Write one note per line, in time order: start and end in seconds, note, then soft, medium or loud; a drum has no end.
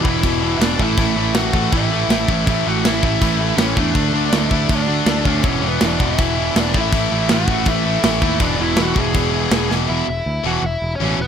0.03 0.20 E1 loud
0.03 0.22 E2 medium
0.03 0.22 B2 medium
0.03 0.25 E3 medium
0.03 0.56 E4 medium
0.03 kick medium
0.07 0.62 E5 medium
0.23 0.54 E1 medium
0.23 0.40 E2 medium
0.23 0.41 B2 loud
0.23 0.43 E3 loud
0.23 kick loud
0.23 crash medium
0.42 0.59 E2 medium
0.42 0.60 B2 medium
0.42 0.62 E3 medium
0.59 0.75 E1 medium
0.59 0.78 E2 medium
0.59 0.78 B2 loud
0.59 0.78 E3 loud
0.59 0.78 D4 medium
0.59 0.83 D5 medium
0.59 snare loud
0.59 crash medium
0.78 0.95 A1 medium
0.78 0.98 A2 loud
0.78 0.99 E3 loud
0.78 0.99 A3 loud
0.78 1.32 E4 medium
0.78 kick medium
0.83 1.37 E5 loud
0.97 1.14 A1 loud
0.97 1.15 A2 medium
0.97 1.17 E3 medium
0.97 1.17 A3 loud
0.97 kick loud
0.97 crash medium
1.15 1.31 A1 medium
1.15 1.35 A2 medium
1.15 1.36 E3 loud
1.15 1.36 A3 medium
1.34 1.50 A1 loud
1.34 1.54 A2 medium
1.34 1.55 E3 medium
1.34 1.55 A3 medium
1.34 1.70 F#4 medium
1.34 1.71 F#5 loud
1.34 snare loud
1.34 crash medium
1.53 1.69 A1 medium
1.53 1.71 A2 medium
1.53 1.72 E3 medium
1.53 1.74 A3 medium
1.53 kick medium
1.72 2.03 A1 medium
1.72 1.90 A2 medium
1.72 1.91 E3 medium
1.72 1.92 A3 loud
1.72 2.43 E4 medium
1.72 kick loud
1.72 crash medium
1.77 2.49 E5 medium
1.92 2.08 A2 medium
1.92 2.09 E3 medium
1.92 2.11 A3 medium
2.09 2.24 A1 medium
2.09 2.27 A2 medium
2.09 2.28 E3 medium
2.09 2.30 A3 medium
2.09 snare loud
2.09 crash medium
2.28 2.44 A1 medium
2.28 2.46 A2 medium
2.28 2.47 E3 loud
2.28 2.48 A3 loud
2.28 kick medium
2.46 2.62 A1 loud
2.46 2.65 A2 loud
2.46 2.66 E3 loud
2.46 2.67 A3 medium
2.46 2.64 E4 medium
2.46 kick loud
2.46 crash medium
2.50 2.68 E5 loud
2.67 2.82 A1 medium
2.67 2.84 A2 medium
2.67 2.84 E3 loud
2.67 2.86 A3 medium
2.67 2.83 F#4 medium
2.67 2.86 F#5 loud
2.84 3.00 A1 medium
2.84 3.02 A2 medium
2.84 3.02 E3 medium
2.84 3.04 A3 medium
2.84 3.00 E4 medium
2.84 3.04 E5 medium
2.84 snare loud
2.84 crash medium
3.01 3.18 A1 medium
3.01 3.21 A2 medium
3.01 3.21 E3 medium
3.01 3.22 A3 loud
3.01 3.54 E4 medium
3.01 3.61 E5 medium
3.01 kick medium
3.21 3.52 A1 medium
3.21 3.39 A2 loud
3.21 3.41 E3 medium
3.21 3.40 A3 medium
3.21 kick loud
3.21 crash medium
3.41 3.56 A2 medium
3.41 3.57 E3 medium
3.41 3.58 A3 loud
3.56 3.73 A1 medium
3.56 3.75 A2 medium
3.56 3.76 E3 medium
3.56 3.77 A3 medium
3.56 3.74 C#4 medium
3.56 3.80 C#5 medium
3.56 snare loud
3.56 crash medium
3.76 3.92 E2 medium
3.76 3.94 A2 medium
3.76 3.95 E3 loud
3.76 3.94 A3 loud
3.76 4.28 D4 medium
3.76 4.36 D5 loud
3.76 kick medium
3.95 4.10 D2 loud
3.95 4.14 D3 medium
3.95 4.14 A3 loud
3.95 4.15 D4 loud
3.95 kick loud
3.95 crash medium
4.13 4.29 D2 medium
4.13 4.32 D3 medium
4.13 4.32 A3 medium
4.13 4.33 D4 medium
4.32 4.48 D2 medium
4.32 4.50 D3 medium
4.32 4.51 A3 medium
4.32 4.52 D4 medium
4.32 4.69 E4 medium
4.32 snare loud
4.32 crash medium
4.38 4.74 E5 loud
4.51 4.66 D2 medium
4.51 4.68 D3 medium
4.51 4.69 A3 medium
4.51 4.70 D4 medium
4.51 kick medium
4.69 5.00 D2 medium
4.69 4.87 D3 medium
4.69 4.87 A3 loud
4.69 4.88 D4 loud
4.69 5.41 D4 medium
4.69 kick loud
4.69 crash medium
4.75 5.26 D5 loud
4.88 5.05 D3 medium
4.88 5.06 A3 medium
4.88 5.06 D4 loud
5.06 5.22 D2 medium
5.06 5.24 D3 medium
5.06 5.25 A3 medium
5.06 5.26 D4 loud
5.06 snare loud
5.06 crash medium
5.25 5.41 D2 medium
5.25 5.43 D3 medium
5.25 5.43 A3 loud
5.25 5.44 D4 loud
5.25 5.49 C#5 loud
5.25 kick medium
5.42 5.59 E1 loud
5.42 5.59 E2 loud
5.42 5.60 B2 loud
5.42 5.61 E3 loud
5.42 kick loud
5.42 crash medium
5.48 5.63 C#4 medium
5.48 5.66 C#5 loud
5.61 5.77 E1 medium
5.61 5.79 E2 medium
5.61 5.80 B2 medium
5.61 5.81 E3 medium
5.61 5.81 B3 medium
5.68 5.84 B4 loud
5.80 5.96 E1 loud
5.80 5.98 E2 medium
5.80 5.98 B2 medium
5.80 6.00 E3 medium
5.80 6.00 D4 medium
5.80 snare loud
5.80 crash medium
5.87 6.03 D5 loud
5.99 6.15 E1 medium
5.99 6.15 E2 medium
5.99 6.15 B2 medium
5.99 6.18 E3 medium
5.99 6.53 E4 medium
5.99 kick medium
6.05 6.60 E5 medium
6.17 6.49 E1 medium
6.17 6.34 E2 medium
6.17 6.35 B2 loud
6.17 6.36 E3 loud
6.17 kick loud
6.17 crash medium
6.35 6.53 E2 medium
6.35 6.54 B2 medium
6.35 6.55 E3 medium
6.54 6.71 E1 medium
6.54 6.72 E2 loud
6.54 6.73 B2 medium
6.54 6.74 E3 loud
6.54 6.74 D4 medium
6.54 snare loud
6.54 crash medium
6.60 6.77 D5 loud
6.73 6.90 A1 medium
6.73 6.91 A2 loud
6.73 6.93 E3 loud
6.73 6.93 A3 loud
6.73 kick medium
6.78 7.28 E4 medium
6.78 7.34 E5 loud
6.92 7.08 A1 loud
6.92 7.10 A2 loud
6.92 7.12 E3 loud
6.92 7.11 A3 loud
6.92 kick loud
6.92 crash medium
7.11 7.27 A1 medium
7.11 7.29 A2 medium
7.11 7.30 E3 medium
7.11 7.30 A3 loud
7.29 7.46 A1 loud
7.29 7.48 A2 medium
7.29 7.49 E3 medium
7.29 7.49 A3 medium
7.29 7.65 F#4 medium
7.29 snare loud
7.29 crash medium
7.34 7.67 F#5 loud
7.48 7.63 A1 medium
7.48 7.65 A2 medium
7.48 7.67 E3 medium
7.48 7.67 A3 loud
7.48 kick medium
7.65 7.97 A1 loud
7.65 7.84 A2 medium
7.65 7.86 E3 loud
7.65 7.85 A3 loud
7.65 8.38 E4 medium
7.65 kick loud
7.65 crash medium
7.70 8.45 E5 loud
7.85 8.03 A2 loud
7.85 8.05 E3 medium
7.85 8.04 A3 loud
8.03 8.19 A1 medium
8.03 8.21 A2 medium
8.03 8.23 E3 medium
8.03 8.22 A3 loud
8.03 snare loud
8.03 crash medium
8.22 8.37 D#2 medium
8.22 8.40 A2 medium
8.22 8.40 E3 medium
8.22 8.41 A3 loud
8.22 kick medium
8.39 8.56 E1 loud
8.39 8.56 E2 medium
8.39 8.56 B2 loud
8.39 8.56 E3 loud
8.39 8.53 D4 medium
8.39 8.54 D5 loud
8.39 kick loud
8.39 crash medium
8.55 8.75 E2 medium
8.55 8.75 B2 medium
8.55 8.76 E3 loud
8.55 8.62 D5 medium
8.59 8.75 E1 medium
8.59 8.78 E4 medium
8.59 8.80 E5 loud
8.76 8.94 E1 loud
8.76 8.94 E2 medium
8.76 8.95 B2 medium
8.76 8.96 E3 medium
8.76 snare loud
8.76 crash medium
8.82 8.98 F#4 medium
8.82 9.00 F#5 loud
8.95 9.12 E1 loud
8.95 9.12 E2 medium
8.95 9.13 B2 medium
8.95 9.14 E3 medium
8.95 9.68 G#4 medium
8.95 kick medium
9.00 9.73 G#5 loud
9.14 9.46 E1 medium
9.14 9.30 E2 medium
9.14 9.31 B2 loud
9.14 9.31 E3 medium
9.14 kick loud
9.14 crash medium
9.31 9.49 E2 medium
9.31 9.49 B2 medium
9.31 9.50 E3 medium
9.35 9.52 E2 medium
9.50 9.67 E1 medium
9.50 9.68 E2 medium
9.50 9.68 B2 loud
9.50 9.69 E3 medium
9.50 snare loud
9.50 crash medium
9.69 9.86 E1 medium
9.69 9.87 E2 medium
9.69 9.87 B2 loud
9.69 9.88 E3 loud
9.69 snare medium
9.88 10.02 E1 loud
9.88 10.04 E2 medium
9.88 10.04 B2 medium
9.88 10.05 E3 medium
9.88 10.07 E4 medium
9.88 10.08 E5 medium
10.08 10.20 E1 medium
10.08 10.44 E4 medium
10.08 10.46 E5 medium
10.26 10.39 D2 medium
10.44 10.57 E1 medium
10.44 10.60 E2 medium
10.44 10.60 B2 medium
10.44 10.61 E3 medium
10.44 10.63 F#4 medium
10.44 10.66 F#5 medium
10.63 10.75 E1 medium
10.63 10.94 E5 medium
10.67 10.92 E4 medium
10.82 10.94 E1 medium
10.95 11.20 C#4 medium
10.95 11.20 C#5 medium
11.00 11.13 A1 medium
11.00 11.16 E2 medium
11.00 11.17 B2 loud
11.00 11.17 E3 loud
11.19 11.27 E1 medium
11.19 11.27 B3 medium
11.19 11.27 B4 medium